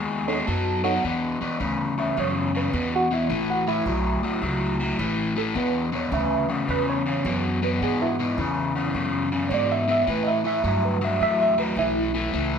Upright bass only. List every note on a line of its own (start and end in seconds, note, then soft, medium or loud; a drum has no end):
0.00 0.46 D#2 medium
0.48 1.02 F#2 medium
1.04 1.39 E2 medium
1.41 muted upright bass stroke soft
1.60 2.15 D2 medium
2.17 2.72 F#2 medium
2.73 3.28 E2 medium
3.30 3.85 A1 medium
3.86 4.21 B1 medium
4.42 4.97 C#2 medium
4.99 5.54 A1 loud
5.55 6.10 E2 medium
6.12 6.67 D2 medium
6.68 7.23 E2 medium
7.25 7.80 F#2 loud
7.82 8.36 G#2 medium
8.38 8.93 E2 medium
8.94 9.49 F#2 medium
9.50 10.05 G#2 medium
10.07 10.62 A2 medium
10.64 11.19 G2 medium
11.21 11.75 E2 medium
11.76 12.31 B1 medium
12.34 12.59 C#2 medium